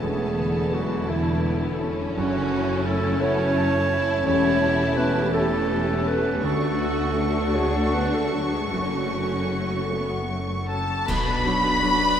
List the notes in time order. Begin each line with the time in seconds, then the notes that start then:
Already playing: A3 A5 C#6
0.01 E1 E2 D3 E3 A3 B3 E4 G#4
0.20 A3
0.38 D3
0.56 E4
0.73 F#3 F#4 A4
0.92 D6
1.09 D3 E3 A3 E4 E5
1.27 A5
1.44 B3 E5
1.63 A4
1.79 C#4 E4
2.00 D4
2.15 F#1 F#2 F#3 C#4 E4 F#4 A5
2.35 C#3
2.52 A3
2.85 A3 E4 A4
3.05 A4
3.19 A3 B3 C#4 E4 C#5
3.40 E5
3.55 A3 C#5
3.74 E4
3.90 E4
4.09 A3
4.25 E1 E2 A3 C#4 E4 G4 C#5
4.44 E3
4.62 A3
4.80 E4
4.97 B3 G4 B4
5.15 A4
5.32 A3 C#4 E4 G4 A4 E5
5.51 G5
5.69 E5
5.87 G4
6.05 B3 E4 B4
6.24 A3
6.41 D2 D3 A3 D4 F#4 A4 C#6
6.60 A3
6.79 F#4
6.97 F#4
7.16 D4 A4
7.35 C#5
7.54 G#3 A3 F#4 G#4 C#5 F#5
7.73 A3 A4 A5
7.92 B3 B4 F#5
8.12 A3 A4
8.31 F#3 F#4
8.51 G#3 C#4 G#4
8.71 F#1 F#2 F#3 A3 C#4 F#4
8.91 C#3
9.11 A3
9.31 C#4
9.51 F#4
9.71 A4
9.90 A3 B3 C#4 F#4 C#5
10.09 F#5
10.29 A3 C#5
10.50 F#4
10.68 C#4 A4 A5
10.89 A3
11.06 B1 B2 F#3 B3 D4 F#4 B4 B5, concert bass drum, crash
11.26 F#3 D4 B4
11.44 F#3 B3 D4 F#4
11.63 D4 F#4 B4
11.83 F#3 B3 D4 F#4
12.00 D4 B4 D5